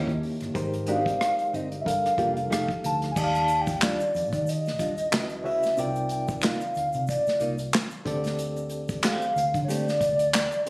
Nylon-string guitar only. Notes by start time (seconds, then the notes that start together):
Already playing: C#4 E4 G4
0.88 B3 D4 F#4
1.00 C4 D#4 G4
1.53 C4 D#4 G4
1.86 muted nylon-string guitar stroke
2.18 A#3 F4 G4
2.50 A3 D#4 G4
3.82 G3 D4 F4
4.79 G3 D4 F4
6.43 A#3 D#4 F4
7.40 A#3 D#4 F4
9.03 A3 C4 G4
9.68 A3 C4 G4